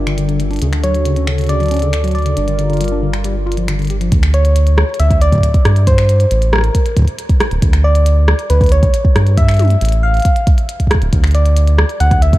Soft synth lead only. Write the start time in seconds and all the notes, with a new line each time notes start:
Already playing: D5
0.84 C#5
1.49 D5
2.15 D5
4.34 C#5
5.00 E5
5.22 D5
5.87 C5
6.53 A#4
7.84 D5
8.50 B4
8.72 C#5
9.37 E5
10.03 F5
11.35 D5
12.00 F#5
12.22 E5